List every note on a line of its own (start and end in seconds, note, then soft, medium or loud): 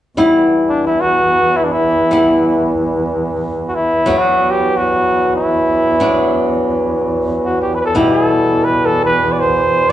0.17 4.06 E2 medium
0.17 2.08 G3 medium
0.17 2.08 B3 medium
0.17 2.08 E4 medium
0.69 0.86 D4 medium
0.87 1.02 E4 medium
1.01 1.58 F#4 medium
1.56 1.66 E4 medium
1.64 1.74 D4 medium
1.72 2.74 E4 medium
2.11 4.02 G3 medium
2.11 4.02 B3 soft
2.11 4.03 E4 medium
3.68 3.76 F#4 soft
3.75 4.20 E4 medium
4.06 7.94 E2 medium
4.06 5.97 F#3 medium
4.06 5.97 B3 soft
4.06 5.98 D4 medium
4.18 4.52 F#4 medium
4.50 4.78 G4 medium
4.77 5.33 F#4 medium
5.36 6.60 E4 medium
6.00 7.91 F#3 soft
6.00 7.92 B3 soft
6.00 7.92 D4 medium
7.44 7.60 F#4 medium
7.62 7.76 G4 medium
7.75 7.77 B4 medium
7.81 7.85 B4 medium
7.85 7.99 A4 medium
7.94 9.92 E2 medium
7.94 9.86 B2 soft
7.94 9.86 G3 soft
7.94 9.86 E4 medium
7.94 8.11 G4 medium
8.10 8.66 A4 medium
8.64 8.87 B4 medium
8.85 9.04 A4 medium
9.05 9.33 B4 medium
9.32 9.41 D5 medium
9.40 9.91 C5 medium